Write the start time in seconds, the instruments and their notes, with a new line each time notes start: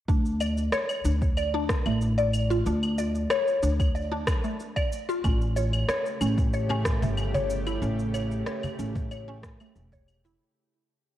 0.08 upright bass D2, synth pluck D4, kick, shaker
0.25 shaker
0.40 synth pluck D5, claves, shaker
0.57 shaker
0.72 synth pluck C#5, cross-stick, shaker
0.89 claves, shaker
1.04 upright bass D2, synth pluck D4, shaker
1.22 kick, shaker
1.37 synth pluck D5, claves, shaker
1.54 synth pluck D4
1.69 kick, cross-stick, shaker
1.86 upright bass A1, synth pluck A3, claves, shaker
2.02 shaker
2.18 synth pluck D5, shaker
2.34 claves, shaker
2.50 synth pluck F4, shaker
2.66 upright bass D2, synth pluck D4, shaker
2.83 claves, shaker
2.98 synth pluck D5, shaker
3.15 shaker
3.30 synth pluck C#5, cross-stick, claves, shaker
3.48 shaker
3.63 upright bass D2, synth pluck D4, shaker
3.80 kick, claves, shaker
3.95 synth pluck D5, shaker
4.12 synth pluck D4
4.27 kick, cross-stick, claves, shaker
4.44 synth pluck A3, shaker
4.60 shaker
4.76 synth pluck D5, kick, claves, shaker
4.92 shaker
5.09 synth pluck F4, shaker
5.23 upright bass A1, synth drone C#3 A3 G4, synth pluck C#4, kick, claves, shaker
5.41 shaker
5.56 synth pluck C#5, shaker
5.73 claves, shaker
5.89 synth pluck C#5, cross-stick, cajon slap, shaker
6.06 shaker
6.21 upright bass A1, synth pluck C#4, claves, shaker
6.38 kick, cajon slap, shaker
6.53 synth pluck C#5, shaker
6.69 synth pluck C#4, cajon slap, claves
6.85 kick, cross-stick, shaker
7.02 upright bass G1, synth pluck A3, cajon bass, shaker
7.17 claves, shaker
7.34 synth pluck C#5, cajon bass, shaker
7.50 shaker
7.67 synth pluck E4, claves, shaker
7.82 upright bass A1, synth pluck C#4, shaker
7.99 shaker
8.14 synth pluck C#5, claves, shaker
8.32 shaker
8.46 synth pluck C#5, cross-stick, cajon slap, shaker
8.63 cajon bass, claves, shaker
8.79 upright bass A1, synth pluck C#4, shaker
8.96 cajon bass, kick, cajon slap, shaker
9.11 synth pluck C#5, claves, shaker
9.28 synth pluck C#4
9.43 kick, cross-stick, shaker
9.60 synth pluck A3, claves, shaker
9.76 upright bass E1, shaker
9.92 synth pluck C#5, cajon bass, kick, shaker
10.08 claves, shaker
10.24 synth pluck E4, cajon slap, shaker